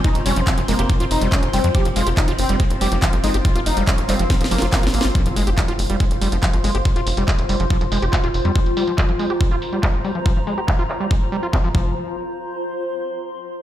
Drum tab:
HH |x--x--o--x--x--x--o--x--x--x--o--x--x--x--o--x--|x--x--o--x--x--x--o--x--x--x--o--x--x--x--o--x--|x--x--o--x--x--x--o--x--x--x--o--x--x--x--o--x--|x--x--o--x--x--x--o--x--x--x--o--x--x--x--o--x--|
CP |------------x-----------------------x-----------|------------x-----------------------x-----------|------------x-----x-----------------x-----------|------------x-----------------------x-----------|
SD |------------------------------------------------|------------------------------------------------|------------------------o---o---o---o---o---o---|------------------------------------------------|
BD |o-----------o-----------o-----------o-----------|o-----------o-----------o-----------o-----------|o-----------o-----------o-----------o-----------|o-----------o-----------o-----------o-----------|

HH |x--x--o--x--x--x--o--x--x--x--o--x--x--x--o--x--|x--x--o--x--x--x--o--x--x--x--o--x--x--x--o--x--|---x--o--x-----x--o--x-----x--o-----------------|------------------------------------------------|
CP |------------x-----------------------x-----------|------------x-----------------------x-----------|------------x-----x-----------------x-----------|------------------------------------------------|
SD |------------------------------------------------|------------------------------------------------|------------------------------------------------|------------------------------------------------|
BD |o-----------o-----------o-----------o-----------|o-----------o-----------o-----------o-----------|o-----------o-----------o-----------o-----o-----|------------------------------------------------|